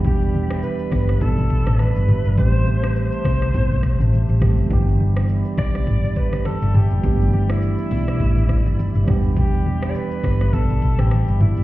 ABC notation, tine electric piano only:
X:1
M:4/4
L:1/8
Q:"Swing 16ths" 1/4=103
K:Em
V:1 name="Tine electric piano"
[E,G,B,DG]6- [E,G,B,DG] z | [E,G,A,CG]6- [E,G,A,CG] [E,G,A,CG] | [E,G,B,DG]8 | [E,G,A,B,DG]6- [E,G,A,B,DG] [E,G,B,DG]- |
[E,G,B,DG]6- [E,G,B,DG] z |]